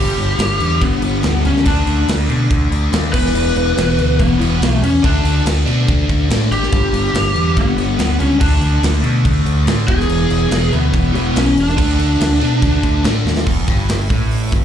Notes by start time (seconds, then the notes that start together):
Already playing: G1 G2 D3 G4
0.00 G3
0.17 G1, crash
0.38 G1, snare, crash
0.59 E2 G2 D3 G3, crash
0.81 G1 B3, kick, crash
1.02 G1, crash
1.22 D2 G2 D3 G3, snare, crash
1.45 C#2 C#4, crash
1.56 snare
1.65 D2 D3 A3 D4, kick, crash
1.87 D2, crash
2.08 D2, snare, crash
2.28 B2 D3 A3 D4, crash
2.51 D2, kick, crash
2.71 D2, crash
2.92 D#2 D3 A3 D4, snare, crash
3.13 E1 E2 B2 E3 B4, kick, crash
3.26 snare
3.34 E1, crash
3.56 E1, crash
3.76 E1 E2 B2 E3, snare, crash
3.98 D2, crash
4.19 E1 B3, kick, crash
4.39 E1 E2 B2 E3, crash
4.60 B1, snare, crash
4.68 A3
4.82 E2 C#4, crash
5.03 D2 D3 A3 D4, kick, crash
5.24 D2, crash
5.45 D2, snare, crash
5.66 B2 D3 A3 D4, crash
5.88 D2, kick, crash
6.09 D2, kick, crash
6.29 A2 D3 A3 D4, snare, crash
6.51 G#1 G4, crash
6.63 snare
6.71 G1 G2 D3 G3, kick, crash
6.92 G1, crash
7.13 G1, snare, crash
7.35 E2 G2 D3 G3, crash
7.57 G1 B3, kick, crash
7.77 G1, crash
7.98 D2 G2 D3 G3, snare, crash
8.20 C#2 C#4, crash
8.39 D2 D3 A3 D4, kick, crash
8.61 D2, crash
8.83 D2, snare, crash
9.02 B2 D3 A3 D4, crash
9.25 D2, kick, crash
9.46 D2, crash
9.65 A2 D3 A3 D4, snare, crash
9.87 E1 E2 B2 E3 G#4, kick, crash
10.00 snare
10.09 E1, crash
10.30 E1, crash
10.49 E1 E2 B2 E3, snare, crash
10.72 D2 B3, crash
10.93 E1, kick, crash
11.13 E1 E2 B2 E3, crash
11.36 B1 C#4, snare, crash
11.57 E1 D4, crash
11.69 snare
11.77 D2 D3 A3 D4, kick, crash
11.99 D2, crash
12.20 D2, snare, crash
12.40 B2 D3 A3 D4, crash
12.62 D2, kick, crash
12.83 D2, kick, crash
13.03 A2 D3 A3 D4, snare, crash
13.25 D#2, snare
13.37 snare
13.46 E1 E2, kick, crash
13.68 G1 G2, kick, open hi-hat
13.89 snare, open hi-hat
14.09 A1 A2, kick, open hi-hat
14.31 open hi-hat
14.52 G1 G2, kick, open hi-hat